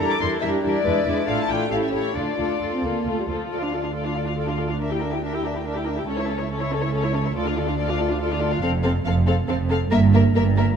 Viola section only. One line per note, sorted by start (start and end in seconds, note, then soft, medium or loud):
0.00 0.20 G3 soft
0.00 0.20 D4 soft
0.21 0.41 G3 soft
0.21 0.41 D4 soft
0.42 0.62 G3 soft
0.42 0.62 D4 soft
0.64 0.84 G3 soft
0.64 0.84 D4 soft
0.85 1.06 G#3 medium
0.85 1.06 D4 soft
1.07 1.28 G#3 soft
1.07 1.26 D4 soft
1.28 1.49 A3 soft
1.28 1.49 D4 soft
1.50 1.70 A3 soft
1.50 1.71 D4 soft
1.72 1.92 A3 soft
1.72 1.92 E4 soft
1.93 2.14 A3 soft
1.93 2.15 E4 soft
2.15 2.37 A3 soft
2.15 2.37 D4 soft
2.38 2.60 A3 soft
2.38 2.60 D4 soft
2.61 2.71 A3 soft
2.74 2.84 C4 soft
2.85 3.07 A#3 soft
3.07 3.18 A3 soft
3.19 3.23 G3 soft
3.30 3.51 F3 soft
3.52 3.61 F4 soft
3.62 3.73 D4 soft
3.73 3.83 F4 soft
3.84 3.94 D4 soft
3.95 4.04 F4 soft
4.06 4.16 D4 soft
4.15 4.26 F4 soft
4.26 4.37 D4 soft
4.37 4.47 F4 soft
4.47 4.58 D4 soft
4.58 4.69 F4 soft
4.69 4.78 D4 soft
4.79 4.90 D4 soft
4.90 5.01 E4 soft
5.02 5.12 D4 soft
5.12 5.23 E4 soft
5.23 5.33 D4 soft
5.34 5.44 E4 soft
5.44 5.55 D4 soft
5.55 5.66 E4 soft
5.65 5.75 D4 soft
5.77 5.87 E4 soft
5.87 5.98 D4 soft
5.97 6.08 E4 soft
6.08 6.18 C#4 soft
6.18 6.29 E4 soft
6.28 6.39 C#4 medium
6.40 6.51 E4 soft
6.50 6.61 C#4 soft
6.61 6.72 E4 soft
6.72 6.83 C#4 soft
6.82 6.93 E4 medium
6.93 7.03 C#4 soft
7.04 7.15 E4 soft
7.14 7.25 C#4 soft
7.24 7.35 E4 medium
7.35 7.45 F4 medium
7.46 7.57 D4 soft
7.57 7.68 F4 medium
7.68 7.78 D4 soft
7.79 7.88 F4 soft
7.89 7.99 D4 soft
8.01 8.10 F4 medium
8.11 8.21 D4 medium
8.21 8.30 F4 medium
8.31 8.41 D4 medium
8.42 8.52 F4 soft
8.52 8.62 D4 medium
8.62 8.70 C4 medium
8.84 8.92 C4 medium
9.06 9.14 C4 medium
9.27 9.35 C4 medium
9.49 9.57 C4 medium
9.69 9.77 C4 medium
9.91 9.99 A#3 medium
10.13 10.21 A#3 medium
10.34 10.42 A#3 medium
10.56 10.64 A#3 medium